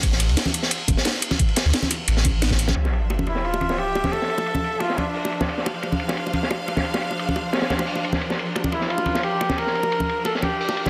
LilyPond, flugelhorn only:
\new Staff \with { instrumentName = "Flugelhorn" } { \time 4/4 \key d \minor \tempo 4 = 176 r1 | r1 | r4. e'8 f'4 g'4 | a'2 f'8 d'4.~ |
d'8 r2. r8 | r1 | r4. e'8 f'4 g'4 | bes'2 a'8 g'4. | }